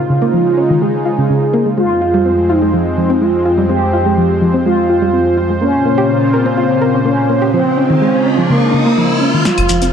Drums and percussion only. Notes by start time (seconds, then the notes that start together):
9.45 snare, closed hi-hat, shekere
9.58 closed hi-hat, claves
9.69 open hi-hat, shekere
9.82 closed hi-hat, shekere